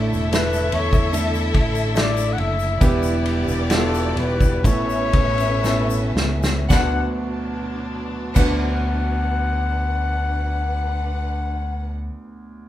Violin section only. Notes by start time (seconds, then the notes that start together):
Already playing: A4 E5
2.82 B3 G4 D5
4.65 C#4 B4 E5
6.71 D4 B4 F#5
8.36 D4 B4 F#5